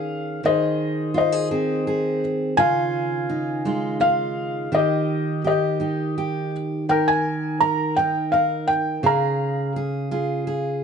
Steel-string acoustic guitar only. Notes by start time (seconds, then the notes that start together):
Already playing: D#3 C#4 G#4
0.44 D#3 G#4
1.14 F4
1.32 G#4
1.51 C4 G#4
1.87 G#4
2.57 C#3 F4
3.29 D#4
3.65 G#3 D#4 F4
4.00 F4
4.72 D#3 G4
5.44 G4
5.80 D#4 G4
6.18 G4
6.89 D#3 A#4
7.61 A#4
7.98 D#4 A#4
8.33 A#4
9.03 C#3 G#4
9.76 G#4
10.11 F4 G#4
10.47 G#4